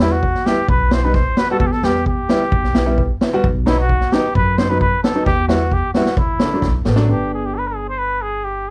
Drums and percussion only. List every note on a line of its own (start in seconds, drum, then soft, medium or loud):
0.00 snare medium
0.23 kick medium
0.35 snare soft
0.46 snare medium
0.68 kick medium
0.91 snare loud
1.03 snare soft
1.14 kick medium
1.14 snare soft
1.37 snare medium
1.60 kick medium
1.72 snare soft
1.83 snare medium
2.06 kick medium
2.29 snare medium
2.52 kick medium
2.64 snare soft
2.74 snare medium
2.98 kick medium
3.21 snare medium
3.44 kick medium
3.66 snare medium
3.89 kick medium
4.01 snare soft
4.12 snare medium
4.35 kick medium
4.58 snare medium
4.81 kick medium
5.04 snare medium
5.26 kick medium
5.26 snare soft
5.49 snare medium
5.72 kick medium
5.94 snare medium
6.05 snare medium
6.17 kick medium
6.39 snare medium
6.62 kick medium
6.62 snare soft
6.85 snare medium
6.96 snare medium